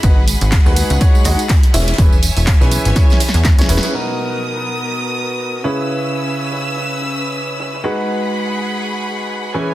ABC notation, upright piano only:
X:1
M:4/4
L:1/16
Q:"Swing 16ths" 1/4=123
K:G#m
V:1 name="Upright piano"
[G,DFGB] z4 [G,DFGB]3 [G,DFGc]2 [G,DFGd] z3 [E,CEGe] z | [E,CEGB] z4 [E,CEGB]3 [E,CEGc]2 z3 [E,CEGc] [CEGB] [CEGB] | [B,,B,DFA]12- [B,,B,DFA]2 [C,CEGB]2- | [C,CEGB]16 |
[G,DFGB]12- [G,DFGB]2 [E,CEGB]2 |]